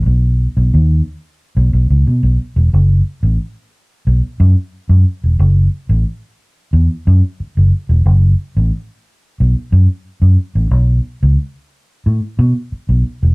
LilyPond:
\new Staff \with { instrumentName = "Fingered electric bass" } { \clef bass \time 4/4 \key fis \dorian \tempo 4 = 90 b,,8. b,,16 dis,8 r8. b,,16 b,,16 cis,16 b,16 b,,16 r16 e,,16 | fis,,8 r16 a,,16 r4 b,,16 r16 fis,16 r8 fis,16 r16 e,,16 | fis,,8 r16 a,,16 r4 e,16 r16 fis,16 r8 fis,,16 r16 e,,16 | fis,,8 r16 a,,16 r4 b,,16 r16 fis,16 r8 fis,16 r16 a,,16 |
b,,8 r16 cis,16 r4 a,16 r16 b,16 r8 b,,16 r16 e,,16 | }